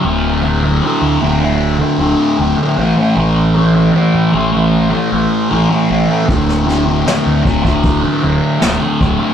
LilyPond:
<<
  \new Staff \with { instrumentName = "Distorted electric guitar" } { \clef bass \time 4/4 \key a \major \tempo 4 = 77 <d, a, d>8 <d, a, d>16 <a, d>16 <d, a, d>8 <d, a, d>16 <a, d>8 <a, d>16 <d, a, d>8 <d, a, d>16 <a, d>16 <a, e a>16 <e a>16 | <a, e a>8 <a, e a>16 <e a>16 <a, e a>8 <a, e a>16 <e a>8 <e a>16 <a, e a>8 <a, e a>16 <e a>16 <a, e a>16 <e a>16 | <d, a, d>8 <d, a, d>16 <a, d>16 <d, a, d>8 <d, a, d>16 <a, d>8 <a, d>16 <d, a, d>8 <d, a, d>16 <a, d>16 <d, a, d>16 <a, d>16 | }
  \new Staff \with { instrumentName = "Fingered electric bass" } { \clef bass \time 4/4 \key a \major d,,4~ d,,16 d,16 d,,4 d,,16 r16 d,,16 r16 a,,16 r16 | a,,4~ a,,16 a,16 a,,4 a,,16 r16 a,,16 r16 a,,16 r16 | d,,4~ d,,16 d,16 d,,4 d,,16 r16 d,,16 r16 d,,16 r16 | }
  \new DrumStaff \with { instrumentName = "Drums" } \drummode { \time 4/4 r4 r4 r4 r4 | r4 r4 r4 r4 | <hho bd>16 sn16 sn8 sn8 bd16 bd16 <hho bd>4 <hho sn>8 bd8 | }
>>